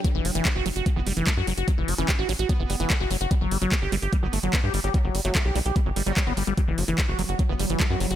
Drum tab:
HH |x-oxx-oxx-oxx-ox|x-oxx-oxx-oxx-ox|x-oxx-oxx-oxx-ox|x-oxx-oxx-oxx-ox|
CP |----x-------x---|----x-------x---|----x-------x---|----x-------x---|
BD |o---o---o---o---|o---o---o---o---|o---o---o---o---|o---o---o---o---|

HH |x-oxx-oxx-oxx-ox|
CP |----x-------x---|
BD |o---o---o---o---|